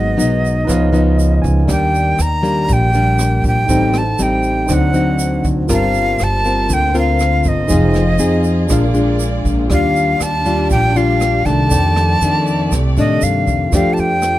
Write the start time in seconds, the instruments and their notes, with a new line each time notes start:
Already playing: upright bass G#1, nylon-string guitar G#2 F#3 B3 D#4, tine electric piano D#4 G#4 B4 F#5, flute D#5
0.17 upright bass B1, nylon-string guitar F#3 B3 D#4, closed hi-hat, shaker
0.44 closed hi-hat, shaker
0.65 nylon-string guitar C#3 F3 B3 D#4, tine electric piano D#4 B4
0.69 upright bass C#2, tine electric piano C#5 F5, kick, cross-stick, closed hi-hat, shaker
0.92 nylon-string guitar F3 B3 D#4, closed hi-hat, shaker
1.18 tine electric piano D#5, closed hi-hat, shaker
1.42 upright bass C#2, tine electric piano G#5, kick, closed hi-hat, shaker
1.65 upright bass D#2, nylon-string guitar D#3 G3 A#3 D4, tine electric piano A#4 D5, kick, cross-stick, closed hi-hat, shaker
1.70 tine electric piano G5, flute G5
1.94 closed hi-hat, shaker
2.19 upright bass D#2, flute A#5, cross-stick, closed hi-hat, shaker
2.43 nylon-string guitar G3 A#3 D4, closed hi-hat, shaker
2.68 upright bass A#1, nylon-string guitar A#2, kick, closed hi-hat, shaker
2.73 flute G5
2.94 nylon-string guitar G3 A#3 D4, closed hi-hat, shaker
3.19 cross-stick, closed hi-hat, shaker
3.44 upright bass A#1, flute G5, kick, closed hi-hat, shaker
3.66 upright bass A1, nylon-string guitar A2 G3, tine electric piano D#4 A4 C5, kick, closed hi-hat, shaker
3.70 nylon-string guitar C4 D#4, tine electric piano G5
3.94 cross-stick, closed hi-hat, shaker
3.98 flute A5
4.19 upright bass A1, nylon-string guitar G3 C4 D#4, closed hi-hat, shaker
4.23 flute G5
4.43 closed hi-hat, shaker
4.66 upright bass D2, nylon-string guitar D3 F#3 D#4, tine electric piano D#4 C5, kick, cross-stick, closed hi-hat, shaker
4.70 nylon-string guitar C4, tine electric piano D5 F#5, flute F#5
4.94 nylon-string guitar F#3 C4 D#4, closed hi-hat, shaker
5.19 closed hi-hat, shaker
5.44 upright bass D2, kick, closed hi-hat, shaker
5.67 upright bass G1, nylon-string guitar G3 C4 F4 A#4, violin section A#3 F4 C5, tine electric piano F4 A#4 C5, kick, cross-stick, closed hi-hat, shaker
5.73 flute F5, tine electric piano A5
5.94 closed hi-hat, shaker
6.19 upright bass G1, cross-stick, closed hi-hat, shaker
6.24 flute A5
6.45 nylon-string guitar C4 F4 A#4, closed hi-hat, shaker
6.69 upright bass D2, nylon-string guitar D3, kick, closed hi-hat, shaker
6.73 flute G5
6.94 nylon-string guitar C4 F4 A#4, closed hi-hat, shaker
6.99 flute F5
7.19 cross-stick, closed hi-hat, shaker
7.44 upright bass G1, kick, closed hi-hat, shaker
7.48 flute D#5
7.67 upright bass F1, nylon-string guitar F3 C4 D#4 G#4, tine electric piano D#4 G#4, violin section G#4 D#5, kick, closed hi-hat, shaker
7.71 violin section C4, tine electric piano C5 F5
7.94 cross-stick, closed hi-hat, shaker
8.19 upright bass F2, nylon-string guitar C4 D#4 G#4, closed hi-hat, shaker
8.44 closed hi-hat, shaker
8.67 upright bass A#1, nylon-string guitar A#2 G#3 D4 F4, violin section A#3 D5, tine electric piano D4 G#4 A#4, kick, cross-stick, closed hi-hat, shaker
8.73 tine electric piano F5
8.94 nylon-string guitar G#3 D4 F4, closed hi-hat, shaker
9.20 closed hi-hat, shaker
9.45 upright bass A#1, kick, closed hi-hat, shaker
9.69 upright bass D#2, nylon-string guitar D#3 G3 D4 F4, violin section D4 G4, tine electric piano G4 D5 F5, kick, cross-stick, closed hi-hat, shaker
9.73 flute F5
9.95 closed hi-hat, shaker
10.20 upright bass D#2, flute A5, cross-stick, closed hi-hat, shaker
10.46 nylon-string guitar G3 D4 F4, closed hi-hat, shaker
10.70 upright bass A#1, nylon-string guitar A#2, flute G5, kick, closed hi-hat, shaker
10.96 nylon-string guitar G3 D4 F4, flute F5, closed hi-hat, shaker
11.21 cross-stick, closed hi-hat, shaker
11.45 upright bass C2, nylon-string guitar D#3 A3 D4, flute A5, kick, closed hi-hat, shaker
11.69 upright bass F2, nylon-string guitar F2, violin section A3 D5, tine electric piano A4 D5 G5, kick, closed hi-hat, shaker
11.96 cross-stick, closed hi-hat, shaker
12.21 upright bass F2, nylon-string guitar D#3 A3 D4, closed hi-hat, shaker
12.47 closed hi-hat, shaker
12.72 upright bass C2, nylon-string guitar C3, kick, cross-stick, closed hi-hat, shaker
12.97 upright bass A2, nylon-string guitar D#3 A3 D4, flute D#5, closed hi-hat, shaker
13.21 upright bass G2, flute F5, closed hi-hat, shaker
13.47 upright bass F2, kick, closed hi-hat, shaker
13.70 upright bass F2, nylon-string guitar A3, tine electric piano F4 A4 D5, kick, cross-stick, closed hi-hat, shaker
13.74 nylon-string guitar F3 D4 G4, flute F5, tine electric piano G5
13.94 flute A5, shaker
13.98 upright bass F2, flute G5, closed hi-hat
14.22 cross-stick, closed hi-hat, shaker